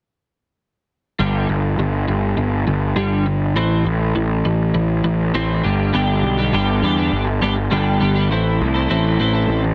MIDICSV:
0, 0, Header, 1, 4, 480
1, 0, Start_track
1, 0, Tempo, 592300
1, 966, Time_signature, 4, 2, 24, 8
1, 7896, End_track
2, 0, Start_track
2, 0, Title_t, "Clean electric guitar"
2, 0, Program_c, 0, 27
2, 964, Note_on_c, 0, 43, 70
2, 969, Note_on_c, 0, 50, 73
2, 973, Note_on_c, 0, 55, 78
2, 1191, Note_off_c, 0, 43, 0
2, 1194, Note_off_c, 0, 50, 0
2, 1196, Note_off_c, 0, 55, 0
2, 1210, Note_on_c, 0, 43, 59
2, 1210, Note_on_c, 0, 50, 59
2, 1425, Note_off_c, 0, 43, 0
2, 1425, Note_off_c, 0, 50, 0
2, 1449, Note_on_c, 0, 43, 60
2, 1455, Note_on_c, 0, 50, 68
2, 1665, Note_off_c, 0, 43, 0
2, 1668, Note_off_c, 0, 50, 0
2, 1682, Note_on_c, 0, 43, 56
2, 1688, Note_on_c, 0, 50, 63
2, 1902, Note_off_c, 0, 43, 0
2, 1905, Note_off_c, 0, 50, 0
2, 1921, Note_on_c, 0, 43, 59
2, 1925, Note_on_c, 0, 50, 59
2, 2141, Note_off_c, 0, 43, 0
2, 2143, Note_off_c, 0, 50, 0
2, 2162, Note_on_c, 0, 43, 52
2, 2167, Note_on_c, 0, 50, 61
2, 2382, Note_off_c, 0, 43, 0
2, 2385, Note_off_c, 0, 50, 0
2, 2398, Note_on_c, 0, 43, 76
2, 2401, Note_on_c, 0, 50, 84
2, 2408, Note_on_c, 0, 55, 74
2, 2630, Note_off_c, 0, 43, 0
2, 2631, Note_off_c, 0, 50, 0
2, 2635, Note_off_c, 0, 55, 0
2, 2640, Note_on_c, 0, 43, 56
2, 2644, Note_on_c, 0, 50, 66
2, 2861, Note_off_c, 0, 43, 0
2, 2864, Note_off_c, 0, 50, 0
2, 2884, Note_on_c, 0, 45, 65
2, 2888, Note_on_c, 0, 52, 79
2, 2892, Note_on_c, 0, 60, 71
2, 3113, Note_off_c, 0, 45, 0
2, 3115, Note_off_c, 0, 52, 0
2, 3117, Note_off_c, 0, 60, 0
2, 3134, Note_on_c, 0, 52, 69
2, 3348, Note_off_c, 0, 52, 0
2, 3363, Note_on_c, 0, 45, 58
2, 3368, Note_on_c, 0, 52, 68
2, 3583, Note_off_c, 0, 45, 0
2, 3586, Note_off_c, 0, 52, 0
2, 3607, Note_on_c, 0, 45, 61
2, 3608, Note_on_c, 0, 52, 60
2, 3825, Note_off_c, 0, 45, 0
2, 3826, Note_off_c, 0, 52, 0
2, 3845, Note_on_c, 0, 45, 58
2, 3846, Note_on_c, 0, 52, 66
2, 4064, Note_off_c, 0, 45, 0
2, 4064, Note_off_c, 0, 52, 0
2, 4086, Note_on_c, 0, 45, 58
2, 4086, Note_on_c, 0, 52, 64
2, 4305, Note_off_c, 0, 45, 0
2, 4305, Note_off_c, 0, 52, 0
2, 4329, Note_on_c, 0, 45, 70
2, 4334, Note_on_c, 0, 52, 77
2, 4334, Note_on_c, 0, 60, 88
2, 4556, Note_off_c, 0, 45, 0
2, 4558, Note_off_c, 0, 52, 0
2, 4558, Note_off_c, 0, 60, 0
2, 4567, Note_on_c, 0, 43, 77
2, 4570, Note_on_c, 0, 50, 74
2, 4574, Note_on_c, 0, 55, 81
2, 4795, Note_off_c, 0, 43, 0
2, 4796, Note_off_c, 0, 50, 0
2, 4798, Note_off_c, 0, 55, 0
2, 4803, Note_on_c, 0, 43, 77
2, 4808, Note_on_c, 0, 50, 74
2, 4811, Note_on_c, 0, 55, 72
2, 4812, Note_on_c, 0, 59, 81
2, 4818, Note_on_c, 0, 62, 84
2, 4822, Note_on_c, 0, 67, 90
2, 5154, Note_off_c, 0, 67, 0
2, 5163, Note_off_c, 0, 62, 0
2, 5164, Note_on_c, 0, 67, 68
2, 5166, Note_off_c, 0, 59, 0
2, 5173, Note_on_c, 0, 62, 59
2, 5174, Note_off_c, 0, 55, 0
2, 5176, Note_on_c, 0, 59, 54
2, 5184, Note_on_c, 0, 55, 50
2, 5276, Note_off_c, 0, 43, 0
2, 5284, Note_off_c, 0, 50, 0
2, 5285, Note_off_c, 0, 55, 0
2, 5286, Note_on_c, 0, 43, 80
2, 5290, Note_off_c, 0, 59, 0
2, 5292, Note_off_c, 0, 62, 0
2, 5293, Note_on_c, 0, 50, 86
2, 5295, Note_off_c, 0, 67, 0
2, 5295, Note_on_c, 0, 55, 92
2, 5300, Note_on_c, 0, 59, 88
2, 5302, Note_on_c, 0, 62, 88
2, 5304, Note_on_c, 0, 67, 92
2, 5520, Note_off_c, 0, 55, 0
2, 5529, Note_on_c, 0, 55, 66
2, 5530, Note_off_c, 0, 59, 0
2, 5535, Note_off_c, 0, 62, 0
2, 5539, Note_off_c, 0, 67, 0
2, 5540, Note_on_c, 0, 59, 68
2, 5545, Note_on_c, 0, 62, 74
2, 5549, Note_on_c, 0, 67, 78
2, 5640, Note_off_c, 0, 67, 0
2, 5646, Note_off_c, 0, 62, 0
2, 5649, Note_on_c, 0, 67, 62
2, 5653, Note_off_c, 0, 59, 0
2, 5655, Note_on_c, 0, 62, 64
2, 5657, Note_off_c, 0, 55, 0
2, 5662, Note_on_c, 0, 59, 58
2, 5666, Note_on_c, 0, 55, 52
2, 5768, Note_off_c, 0, 43, 0
2, 5771, Note_off_c, 0, 50, 0
2, 5878, Note_off_c, 0, 67, 0
2, 5881, Note_off_c, 0, 62, 0
2, 5883, Note_off_c, 0, 59, 0
2, 5885, Note_off_c, 0, 55, 0
2, 6011, Note_on_c, 0, 55, 60
2, 6018, Note_on_c, 0, 59, 64
2, 6024, Note_on_c, 0, 62, 72
2, 6028, Note_on_c, 0, 67, 66
2, 6126, Note_off_c, 0, 67, 0
2, 6128, Note_off_c, 0, 62, 0
2, 6129, Note_off_c, 0, 59, 0
2, 6132, Note_off_c, 0, 55, 0
2, 6245, Note_on_c, 0, 43, 78
2, 6252, Note_on_c, 0, 50, 82
2, 6252, Note_on_c, 0, 55, 78
2, 6257, Note_on_c, 0, 59, 74
2, 6261, Note_on_c, 0, 62, 90
2, 6263, Note_on_c, 0, 67, 81
2, 6473, Note_off_c, 0, 55, 0
2, 6478, Note_off_c, 0, 59, 0
2, 6483, Note_on_c, 0, 55, 68
2, 6487, Note_off_c, 0, 62, 0
2, 6488, Note_on_c, 0, 59, 69
2, 6492, Note_off_c, 0, 67, 0
2, 6497, Note_on_c, 0, 62, 69
2, 6502, Note_on_c, 0, 67, 72
2, 6596, Note_off_c, 0, 67, 0
2, 6603, Note_off_c, 0, 62, 0
2, 6606, Note_on_c, 0, 67, 65
2, 6611, Note_off_c, 0, 59, 0
2, 6613, Note_on_c, 0, 62, 58
2, 6616, Note_off_c, 0, 55, 0
2, 6621, Note_on_c, 0, 59, 59
2, 6626, Note_on_c, 0, 55, 54
2, 6712, Note_off_c, 0, 43, 0
2, 6712, Note_off_c, 0, 67, 0
2, 6715, Note_off_c, 0, 50, 0
2, 6716, Note_off_c, 0, 62, 0
2, 6720, Note_off_c, 0, 59, 0
2, 6722, Note_off_c, 0, 55, 0
2, 6727, Note_on_c, 0, 45, 74
2, 6733, Note_on_c, 0, 52, 74
2, 6739, Note_on_c, 0, 60, 79
2, 6743, Note_on_c, 0, 64, 82
2, 6745, Note_on_c, 0, 69, 81
2, 7081, Note_off_c, 0, 69, 0
2, 7084, Note_on_c, 0, 69, 67
2, 7092, Note_off_c, 0, 64, 0
2, 7093, Note_off_c, 0, 60, 0
2, 7095, Note_on_c, 0, 64, 64
2, 7103, Note_on_c, 0, 60, 53
2, 7191, Note_off_c, 0, 45, 0
2, 7201, Note_on_c, 0, 45, 77
2, 7204, Note_off_c, 0, 52, 0
2, 7204, Note_off_c, 0, 60, 0
2, 7207, Note_on_c, 0, 52, 88
2, 7213, Note_off_c, 0, 64, 0
2, 7214, Note_on_c, 0, 60, 85
2, 7216, Note_off_c, 0, 69, 0
2, 7216, Note_on_c, 0, 64, 93
2, 7219, Note_on_c, 0, 69, 92
2, 7443, Note_off_c, 0, 60, 0
2, 7445, Note_off_c, 0, 52, 0
2, 7448, Note_on_c, 0, 52, 69
2, 7453, Note_on_c, 0, 60, 71
2, 7458, Note_off_c, 0, 69, 0
2, 7459, Note_off_c, 0, 64, 0
2, 7462, Note_on_c, 0, 64, 72
2, 7467, Note_on_c, 0, 69, 70
2, 7554, Note_off_c, 0, 69, 0
2, 7563, Note_on_c, 0, 69, 68
2, 7571, Note_off_c, 0, 60, 0
2, 7572, Note_off_c, 0, 64, 0
2, 7575, Note_on_c, 0, 64, 64
2, 7581, Note_on_c, 0, 60, 49
2, 7682, Note_off_c, 0, 45, 0
2, 7804, Note_off_c, 0, 69, 0
2, 7807, Note_off_c, 0, 60, 0
2, 7810, Note_off_c, 0, 64, 0
2, 7814, Note_off_c, 0, 52, 0
2, 7896, End_track
3, 0, Start_track
3, 0, Title_t, "Picked electric bass"
3, 0, Program_c, 1, 34
3, 971, Note_on_c, 1, 31, 75
3, 1185, Note_off_c, 1, 31, 0
3, 1208, Note_on_c, 1, 31, 75
3, 1423, Note_off_c, 1, 31, 0
3, 1440, Note_on_c, 1, 31, 72
3, 1659, Note_off_c, 1, 31, 0
3, 1684, Note_on_c, 1, 31, 66
3, 1902, Note_off_c, 1, 31, 0
3, 1921, Note_on_c, 1, 31, 75
3, 2140, Note_off_c, 1, 31, 0
3, 2165, Note_on_c, 1, 31, 68
3, 2383, Note_off_c, 1, 31, 0
3, 2400, Note_on_c, 1, 31, 68
3, 2883, Note_off_c, 1, 31, 0
3, 2883, Note_on_c, 1, 33, 81
3, 3102, Note_off_c, 1, 33, 0
3, 3123, Note_on_c, 1, 33, 81
3, 3342, Note_off_c, 1, 33, 0
3, 3368, Note_on_c, 1, 33, 75
3, 3585, Note_off_c, 1, 33, 0
3, 3610, Note_on_c, 1, 33, 71
3, 3826, Note_off_c, 1, 33, 0
3, 3844, Note_on_c, 1, 33, 77
3, 4063, Note_off_c, 1, 33, 0
3, 4084, Note_on_c, 1, 33, 69
3, 4302, Note_off_c, 1, 33, 0
3, 4329, Note_on_c, 1, 33, 74
3, 4545, Note_off_c, 1, 33, 0
3, 4575, Note_on_c, 1, 31, 74
3, 4789, Note_off_c, 1, 31, 0
3, 4817, Note_on_c, 1, 31, 83
3, 5042, Note_off_c, 1, 31, 0
3, 5047, Note_on_c, 1, 35, 80
3, 5277, Note_off_c, 1, 35, 0
3, 5289, Note_on_c, 1, 31, 79
3, 5517, Note_off_c, 1, 31, 0
3, 5526, Note_on_c, 1, 40, 75
3, 5756, Note_off_c, 1, 40, 0
3, 5768, Note_on_c, 1, 31, 82
3, 5996, Note_off_c, 1, 31, 0
3, 6013, Note_on_c, 1, 31, 70
3, 6239, Note_off_c, 1, 31, 0
3, 6249, Note_on_c, 1, 31, 77
3, 6476, Note_off_c, 1, 31, 0
3, 6492, Note_on_c, 1, 31, 73
3, 6738, Note_off_c, 1, 31, 0
3, 6738, Note_on_c, 1, 33, 85
3, 6961, Note_off_c, 1, 33, 0
3, 6979, Note_on_c, 1, 36, 82
3, 7201, Note_off_c, 1, 36, 0
3, 7211, Note_on_c, 1, 33, 81
3, 7436, Note_off_c, 1, 33, 0
3, 7453, Note_on_c, 1, 33, 76
3, 7677, Note_off_c, 1, 33, 0
3, 7685, Note_on_c, 1, 33, 87
3, 7896, Note_off_c, 1, 33, 0
3, 7896, End_track
4, 0, Start_track
4, 0, Title_t, "Muted clean electric guitar strokes"
4, 5887, Note_on_c, 9, 29, 41
4, 5969, Note_off_c, 9, 29, 0
4, 6136, Note_on_c, 9, 29, 44
4, 6217, Note_off_c, 9, 29, 0
4, 7813, Note_on_c, 9, 29, 41
4, 7894, Note_off_c, 9, 29, 0
4, 7896, End_track
0, 0, End_of_file